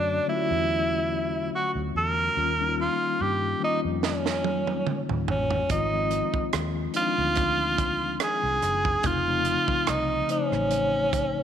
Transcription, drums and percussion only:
4.03 snare
4.26 snare
4.44 high tom
4.67 high tom
4.87 mid tom
5.09 mid tom
5.28 floor tom
5.50 floor tom
5.70 kick, closed hi-hat
6.11 closed hi-hat
6.34 kick
6.53 cross-stick, closed hi-hat
6.94 closed hi-hat
7.36 kick, closed hi-hat
7.78 kick, closed hi-hat
8.20 cross-stick, closed hi-hat
8.62 cross-stick, closed hi-hat
8.85 kick
9.03 kick, closed hi-hat
9.45 closed hi-hat
9.68 kick
9.87 cross-stick, closed hi-hat
10.29 closed hi-hat
10.52 cross-stick
10.71 closed hi-hat
11.13 kick, closed hi-hat

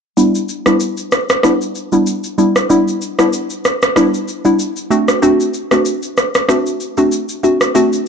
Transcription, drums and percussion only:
0.17 shaker
0.35 shaker
0.49 shaker
0.66 cross-stick, shaker
0.80 shaker
0.97 shaker
1.12 cross-stick, shaker
1.29 cross-stick, shaker
1.43 cross-stick, shaker
1.61 shaker
1.75 shaker
1.92 shaker
2.07 shaker
2.24 shaker
2.38 shaker
2.56 cross-stick, shaker
2.70 shaker
2.88 shaker
3.01 shaker
3.19 cross-stick, shaker
3.33 shaker
3.50 shaker
3.65 cross-stick, shaker
3.82 cross-stick, shaker
3.96 cross-stick, shaker
4.14 shaker
4.28 shaker
4.45 shaker
4.59 shaker
4.76 shaker
4.91 shaker
5.08 cross-stick, shaker
5.23 shaker
5.40 shaker
5.54 shaker
5.71 cross-stick, shaker
5.85 shaker
6.03 shaker
6.17 cross-stick, shaker
6.35 cross-stick, shaker
6.49 cross-stick, shaker
6.66 shaker
6.80 shaker
6.97 shaker
7.12 shaker
7.29 shaker
7.44 shaker
7.61 cross-stick, shaker
7.75 shaker
7.93 shaker

